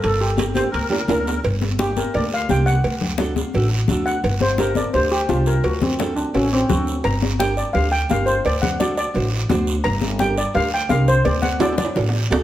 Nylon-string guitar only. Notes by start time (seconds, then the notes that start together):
0.36 A#3 D4 G4
0.54 A#3 D4 G4
0.89 A#3 D4 G4
1.08 A#3 D4 A#4
1.78 A#3 D4 G4
2.14 A#3 D4 A#4
2.49 A#3 D4 G4
3.19 D4 F#4 A4
3.54 D4 F#4 A4
3.90 D4 F#4 A4
4.58 D4 G4 A#4
4.94 D4 G4 C5
5.29 D4 G4 C5
5.99 D4 F#4 A4
6.34 D4 F#4 A4
6.69 D4 F#4 A4
7.39 D4 G4 A#4
7.74 D4 G4 C5
8.09 D4 G4 A#4
8.80 D4 F#4 A4
9.14 D4 F#4 C5
9.49 D4 F#4 C5
10.21 D4 G4 A#4
10.54 D4 G4 A#4
10.89 D4 G4 A#4
11.59 D4 F#4 A4
11.95 D4 F#4 A4
12.30 D4 F#4 A4